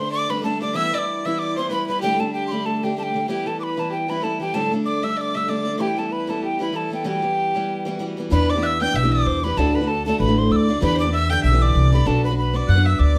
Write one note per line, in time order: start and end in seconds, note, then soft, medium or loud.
0.00 0.28 D3 medium
0.00 0.30 G3 medium
0.00 0.30 A3 medium
0.00 0.31 D4 medium
0.00 0.12 C5 medium
0.00 0.12 C6 loud
0.12 0.31 D5 medium
0.12 0.32 D6 loud
0.29 0.41 D3 medium
0.29 0.42 G3 medium
0.29 0.43 A3 medium
0.29 0.44 D4 medium
0.29 0.45 B4 medium
0.29 0.44 B5 loud
0.42 0.59 D3 medium
0.42 0.60 G3 medium
0.42 0.61 A3 medium
0.42 0.62 D4 medium
0.42 0.63 A4 medium
0.42 0.61 A5 medium
0.61 0.74 D3 medium
0.61 0.74 G3 medium
0.61 0.75 A3 medium
0.61 0.76 D4 medium
0.61 0.74 D5 medium
0.61 0.78 D6 loud
0.74 0.92 E3 medium
0.74 0.93 G3 medium
0.74 0.94 B3 medium
0.74 0.94 E4 medium
0.74 0.95 E5 loud
0.74 0.93 E6 loud
0.93 1.24 E3 soft
0.93 1.26 G3 medium
0.93 1.26 B3 medium
0.93 1.26 E4 medium
0.93 1.27 D5 medium
0.93 0.99 E6 medium
0.98 1.27 D6 medium
1.25 1.56 E3 medium
1.25 1.58 G3 medium
1.25 1.58 B3 medium
1.25 1.58 E4 medium
1.25 1.38 E5 medium
1.25 1.40 E6 loud
1.39 1.58 D5 medium
1.39 1.57 D6 loud
1.56 1.68 E3 medium
1.56 1.69 G3 medium
1.56 1.71 B3 medium
1.56 1.72 E4 medium
1.56 1.71 C5 medium
1.56 1.70 C6 medium
1.70 1.87 E3 medium
1.70 1.88 G3 medium
1.70 1.89 B3 medium
1.70 1.90 E4 medium
1.70 1.86 B4 medium
1.70 1.87 B5 medium
1.87 2.02 E3 soft
1.87 2.02 G3 medium
1.87 2.03 B3 medium
1.87 2.00 B4 medium
1.87 2.01 B5 medium
1.91 2.03 E4 medium
2.01 2.20 D2 medium
2.01 2.20 A2 medium
2.01 2.17 D3 medium
2.01 2.19 G3 medium
2.01 2.19 A3 medium
2.01 2.21 D4 medium
2.01 2.21 G4 medium
2.01 2.22 G5 loud
2.19 2.50 D3 soft
2.19 2.51 G3 soft
2.19 2.52 A3 medium
2.19 2.52 D4 medium
2.19 2.32 A4 medium
2.19 2.33 A5 medium
2.33 2.67 G4 medium
2.33 2.46 G5 medium
2.47 2.82 D3 medium
2.47 2.53 C6 medium
2.52 2.83 G3 medium
2.52 2.84 A3 medium
2.52 2.84 D4 medium
2.52 2.67 B5 medium
2.66 2.84 A4 medium
2.66 2.85 A5 medium
2.83 2.95 D3 medium
2.83 2.97 G3 medium
2.83 2.97 A3 medium
2.83 2.98 D4 medium
2.83 2.96 G4 medium
2.83 2.97 G5 medium
2.96 3.13 D3 medium
2.96 3.15 G3 medium
2.96 3.15 A3 medium
2.96 3.16 D4 medium
2.96 3.26 G4 medium
2.96 3.04 A5 medium
3.03 3.27 G5 medium
3.14 3.28 D3 medium
3.14 3.28 G3 medium
3.14 3.29 A3 medium
3.14 3.30 D4 medium
3.27 3.45 E3 medium
3.27 3.46 G3 medium
3.27 3.47 B3 medium
3.27 3.47 E4 medium
3.27 3.47 G4 medium
3.27 3.49 G5 medium
3.46 3.76 E3 soft
3.46 3.78 G3 medium
3.46 3.78 B3 soft
3.46 3.79 E4 soft
3.46 3.60 A4 medium
3.46 3.59 A5 medium
3.59 3.92 B4 medium
3.59 3.65 D6 medium
3.64 3.81 B5 medium
3.77 4.07 E3 medium
3.77 4.09 G3 medium
3.77 4.09 B3 medium
3.77 4.10 E4 medium
3.77 3.91 A5 medium
3.90 4.08 G4 medium
3.90 4.11 G5 medium
4.08 4.21 E3 medium
4.08 4.22 G3 medium
4.08 4.23 B3 medium
4.08 4.24 E4 medium
4.08 4.23 B4 medium
4.08 4.25 B5 medium
4.22 4.38 E3 medium
4.22 4.40 G3 medium
4.22 4.41 B3 medium
4.22 4.42 E4 medium
4.22 4.40 A4 medium
4.22 4.41 A5 medium
4.40 4.54 E3 medium
4.40 4.54 G3 soft
4.40 4.55 B3 medium
4.40 4.55 E4 medium
4.40 4.56 G4 medium
4.40 4.56 G5 medium
4.54 4.72 D2 medium
4.54 4.72 A2 medium
4.54 4.71 D3 medium
4.54 4.72 G3 medium
4.54 4.72 A3 medium
4.54 4.73 D4 medium
4.54 4.72 A4 medium
4.54 4.72 A5 loud
4.72 5.01 D3 medium
4.72 5.03 G3 medium
4.72 5.03 A3 medium
4.72 5.04 D4 medium
4.85 5.05 D5 medium
4.85 5.06 D6 medium
5.02 5.33 D3 medium
5.02 5.35 G3 medium
5.02 5.35 A3 medium
5.02 5.36 D4 medium
5.02 5.18 E5 medium
5.02 5.18 E6 medium
5.17 5.36 D5 medium
5.17 5.22 E6 medium
5.21 5.38 D6 loud
5.34 5.47 D3 medium
5.34 5.47 G3 medium
5.34 5.49 A3 medium
5.34 5.50 D4 medium
5.34 5.50 E5 medium
5.34 5.51 E6 medium
5.48 5.64 D3 medium
5.48 5.65 G3 medium
5.48 5.66 A3 medium
5.48 5.67 D4 medium
5.48 5.79 D5 medium
5.48 5.82 D6 medium
5.65 5.77 D3 medium
5.65 5.78 G3 medium
5.65 5.79 A3 medium
5.65 5.80 D4 medium
5.78 5.95 E3 medium
5.78 5.96 G3 medium
5.78 5.98 B3 medium
5.78 5.98 E4 medium
5.78 5.97 G4 medium
5.78 6.00 G5 loud
5.96 6.27 E3 medium
5.96 6.28 G3 medium
5.96 6.29 B3 medium
5.96 6.30 E4 medium
5.96 6.12 A4 medium
5.96 6.14 A5 medium
6.11 6.30 B4 medium
6.11 6.31 B5 medium
6.27 6.59 E3 medium
6.27 6.60 G3 medium
6.27 6.61 B3 medium
6.27 6.62 E4 medium
6.27 6.44 A4 medium
6.27 6.43 A5 medium
6.43 6.62 G4 medium
6.43 6.61 G5 medium
6.59 6.71 E3 medium
6.59 6.73 G3 medium
6.59 6.74 B3 medium
6.59 6.75 E4 medium
6.59 6.76 B4 medium
6.59 6.78 B5 medium
6.73 6.89 E3 medium
6.73 6.90 G3 medium
6.73 6.92 B3 medium
6.73 6.92 E4 medium
6.73 7.07 A4 medium
6.73 6.93 A5 medium
6.90 7.03 E3 medium
6.90 7.04 G3 soft
6.90 7.04 B3 medium
6.90 7.06 E4 medium
6.94 7.06 G5 medium
7.04 7.21 E3 medium
7.04 7.22 G3 medium
7.04 7.23 B3 medium
7.04 7.24 F#4 medium
7.04 8.18 G4 medium
7.04 8.04 G5 medium
7.22 7.54 E3 medium
7.22 7.55 G3 soft
7.22 7.56 B3 soft
7.55 7.84 E3 medium
7.55 7.85 G3 medium
7.55 7.86 B3 medium
7.85 7.98 E3 medium
7.85 7.99 G3 medium
7.85 8.00 B3 medium
7.85 8.01 F#4 medium
7.99 8.16 E3 medium
7.99 8.17 G3 medium
7.99 8.18 B3 medium
7.99 8.19 F#4 medium
8.17 8.30 E3 medium
8.17 8.31 G3 medium
8.17 8.30 B3 medium
8.17 8.32 F#4 medium
8.30 8.55 E2 medium
8.30 8.85 E2 medium
8.30 8.56 B2 medium
8.30 8.56 E3 medium
8.30 8.56 B3 loud
8.30 8.55 D4 medium
8.30 8.54 G4 medium
8.30 8.51 B4 loud
8.30 8.51 B5 loud
8.50 8.65 D5 medium
8.50 8.65 D6 loud
8.55 8.79 E3 soft
8.55 8.80 B3 medium
8.55 8.81 D4 soft
8.55 8.80 G4 medium
8.63 8.81 E5 medium
8.63 8.84 E6 medium
8.63 8.67 F#6 medium
8.80 9.03 E3 medium
8.80 9.03 B3 medium
8.80 9.03 D4 medium
8.80 9.02 G4 medium
8.80 8.97 G5 loud
8.80 8.94 G6 loud
8.94 9.21 B1 medium
8.94 9.13 E5 medium
8.94 9.13 E6 loud
9.03 9.45 E2 medium
9.03 9.44 B2 soft
9.03 9.42 E3 medium
9.03 9.43 B3 medium
9.03 9.45 D4 medium
9.03 9.43 G4 medium
9.12 9.28 D5 medium
9.12 9.45 D6 loud
9.26 9.53 E2 medium
9.26 9.44 C5 loud
9.43 9.57 E3 medium
9.43 9.57 B3 medium
9.43 9.57 D4 medium
9.43 9.58 G4 medium
9.43 9.60 B4 medium
9.43 9.59 B5 loud
9.57 9.81 D2 medium
9.57 10.11 D2 medium
9.57 9.82 A2 medium
9.57 9.82 D3 medium
9.57 9.82 A3 medium
9.57 9.80 D4 medium
9.57 9.80 F#4 medium
9.57 9.74 A4 medium
9.57 9.77 A5 loud
9.75 9.90 B4 medium
9.75 9.89 B5 loud
9.81 10.05 D3 medium
9.81 10.06 A3 soft
9.81 10.06 D4 medium
9.81 10.06 F#4 medium
9.88 10.06 A4 medium
9.88 10.05 A5 loud
10.06 10.28 D3 medium
10.06 10.27 A3 medium
10.06 10.27 D4 medium
10.06 10.26 F#4 medium
10.06 10.19 A4 medium
10.06 10.18 A5 medium
10.20 10.46 A1 loud
10.20 10.39 B4 medium
10.20 10.40 B5 loud
10.28 10.69 D2 soft
10.28 10.69 A2 medium
10.28 10.68 D3 medium
10.28 10.68 A3 medium
10.28 10.70 D4 medium
10.28 10.68 F#4 medium
10.38 10.53 C5 medium
10.38 10.53 C6 loud
10.51 10.77 D2 medium
10.51 10.85 D5 medium
10.51 10.57 E6 medium
10.56 10.82 D6 medium
10.68 10.80 D3 medium
10.68 10.82 A3 medium
10.68 10.82 D4 medium
10.68 10.83 F#4 medium
10.81 11.35 E2 loud
10.81 11.06 D3 medium
10.81 11.06 E3 medium
10.81 11.06 B3 loud
10.81 11.05 D4 medium
10.81 11.04 G4 medium
10.81 10.97 B4 loud
10.81 10.98 B5 loud
10.95 11.02 C5 medium
11.00 11.15 D5 medium
11.00 11.12 D6 medium
11.05 11.30 B3 soft
11.05 11.30 D4 medium
11.05 11.30 G4 medium
11.13 11.32 E5 loud
11.13 11.30 E6 loud
11.30 11.52 D3 medium
11.30 11.52 B3 medium
11.30 11.52 D4 medium
11.30 11.51 G4 medium
11.30 11.43 G5 loud
11.30 11.43 G6 loud
11.44 11.70 B1 loud
11.44 11.64 E5 medium
11.44 11.63 E6 loud
11.52 11.91 D3 medium
11.52 11.93 E3 medium
11.52 11.92 B3 medium
11.52 11.93 D4 medium
11.52 11.92 G4 medium
11.62 12.08 D5 medium
11.62 11.93 D6 loud
11.75 12.01 C2 loud
11.92 12.05 D3 medium
11.92 12.04 B3 medium
11.92 12.05 D4 medium
11.92 12.07 G4 medium
11.92 12.08 B5 medium
12.05 12.59 B1 medium
12.05 12.30 B3 medium
12.05 12.30 D4 medium
12.05 12.30 F#4 medium
12.05 12.25 A4 medium
12.05 12.28 B4 medium
12.05 12.24 A5 loud
12.24 12.36 B4 medium
12.24 12.37 B5 loud
12.29 12.53 D4 soft
12.29 12.54 F#4 medium
12.29 12.54 B4 medium
12.37 12.56 B4 medium
12.37 12.58 B5 medium
12.53 12.76 B3 medium
12.53 12.76 D4 medium
12.53 12.75 F#4 medium
12.53 12.74 B4 medium
12.53 12.70 D5 medium
12.53 12.68 D6 medium
12.68 12.95 F#2 loud
12.68 12.87 F#5 medium
12.68 12.85 F#6 loud
12.75 13.14 B3 soft
12.75 13.16 D4 medium
12.75 13.16 F#4 medium
12.75 13.16 B4 medium
12.86 13.00 E5 medium
12.86 13.01 E6 medium
12.99 13.19 D2 medium
12.99 13.19 D5 loud
12.99 13.19 D6 medium
13.15 13.19 B3 medium